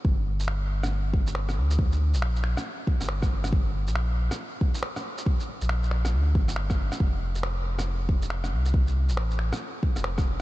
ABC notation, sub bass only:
X:1
M:4/4
L:1/16
Q:"Swing 16ths" 1/4=138
K:Gm
V:1 name="Sub bass" clef=bass
G,,,12- G,,,2 D,,2- | D,,3 B,,,4 z4 G,,,3 G,,,2- | G,,,3 B,,,4 z8 z | z3 B,,,4- B,,, D,,2 G,,,4- G,,, z |
F,,,12- F,,,2 C,,2- | C,,3 A,,,4 z4 F,,,3 F,,,2 |]